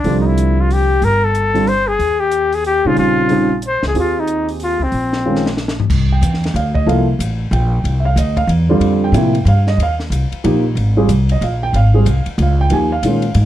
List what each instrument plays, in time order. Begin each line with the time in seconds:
Already playing: trumpet D4
0.04 upright bass C2, grand piano D3 F3 G3 C4, open hi-hat
0.20 trumpet D#4
0.26 trumpet E4
0.38 closed hi-hat
0.61 trumpet F4
0.71 trumpet G4, open hi-hat
1.02 upright bass G1, trumpet A#4, open hi-hat
1.24 trumpet A4
1.35 closed hi-hat
1.54 grand piano D3 G3 C4 F4, open hi-hat
1.67 trumpet C5, open hi-hat
1.87 trumpet G#4
1.99 upright bass D#2, open hi-hat
2.20 trumpet G4
2.31 closed hi-hat
2.52 trumpet G#4, open hi-hat
2.65 trumpet G4, open hi-hat
2.85 upright bass A#2, grand piano C#3 G3 C4 D#4, trumpet F4
2.97 upright bass A#1, trumpet F4, open hi-hat
3.29 grand piano C#3 G3 C4 D#4, open hi-hat
3.62 closed hi-hat
3.67 trumpet C5
3.83 upright bass C#2, snare
3.88 trumpet G#4
3.94 upright bass D#2, grand piano C4 F4 G4 G#4, open hi-hat
4.00 trumpet F4
4.20 trumpet D#4
4.27 closed hi-hat
4.49 open hi-hat
4.60 trumpet F4, open hi-hat
4.79 upright bass C#2, trumpet C4
4.92 upright bass A#1, open hi-hat
5.13 snare
5.26 grand piano D#3 G#3 C#4 F4
5.36 snare
5.46 snare
5.57 snare
5.68 snare
5.80 floor tom
5.90 upright bass C2, kick, crash
6.12 grand piano G5
6.21 upright bass E2, hi-hat pedal, ride
6.34 snare
6.44 snare, ride
6.54 upright bass D2, grand piano F5, ride
6.75 grand piano D#5, kick
6.86 upright bass C2, grand piano F3 A#3 E4 A4 F5, ride
7.19 upright bass A1, hi-hat pedal, ride
7.51 upright bass A#1, grand piano G5, ride
7.84 upright bass C2, ride
8.00 grand piano E5
8.05 grand piano F5
8.16 upright bass D2, grand piano D#5, hi-hat pedal, ride
8.37 grand piano F5, kick, ride
8.47 upright bass E2, ride
8.69 grand piano D3 G3 C4 F4
8.80 upright bass F2, ride
9.04 grand piano G5
9.12 upright bass A2, grand piano C3 F3 A#3 E4, hi-hat pedal, ride
9.35 ride
9.45 upright bass G2, grand piano F5, ride
9.67 grand piano D#5, snare
9.77 upright bass D#2, ride
9.83 grand piano F5
10.00 snare
10.10 upright bass C2, hi-hat pedal, ride
10.32 muted upright bass stroke, ride
10.44 upright bass A#1, grand piano F3 A#3 D#4 G4, ride
10.75 upright bass G#1, ride
10.97 grand piano G3 C4 F4 G#4
11.09 upright bass C2, hi-hat pedal, ride
11.29 grand piano D#5, ride
11.41 upright bass A#1, grand piano F5, ride
11.63 grand piano G5
11.73 upright bass G#1, grand piano F5, ride
11.94 grand piano G3 C4 F4 G#4
12.05 upright bass C2, hi-hat pedal, ride
12.26 muted upright bass stroke, ride
12.38 upright bass C#2, ride
12.42 grand piano F5
12.61 grand piano G5
12.70 upright bass D#2, grand piano F3 A#3 D#4 G4 G#5, ride
12.92 grand piano F5
13.03 upright bass A#2, grand piano D#3 G#3 C#4 F4, hi-hat pedal, ride
13.22 ride
13.35 upright bass G#2, ride